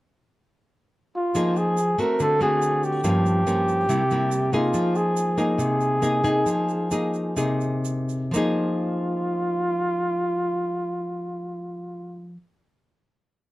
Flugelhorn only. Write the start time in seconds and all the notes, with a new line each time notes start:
1.16 F4
1.57 G#4
2.00 A#4
2.22 A4
2.42 G#4
2.85 G4
4.54 F4
4.96 G#4
5.39 G#4
8.35 F4